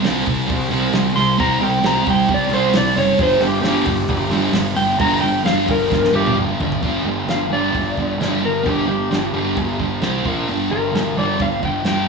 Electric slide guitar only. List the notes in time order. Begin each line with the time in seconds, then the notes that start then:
1.16 C6
1.40 A#5
1.63 G5
1.86 A#5
2.10 G5
2.34 D5
2.54 C5
2.77 D5
2.98 C#5
3.23 C5
3.43 G4
3.62 G4
4.76 G5
5.01 A#5
5.21 G5
5.46 F5
5.71 A#4
6.15 G4
7.30 F5
7.53 D5
8.46 A#4
8.67 G4
8.88 G4
10.71 A#4
11.19 D5
11.42 F5
11.65 G5
11.88 G5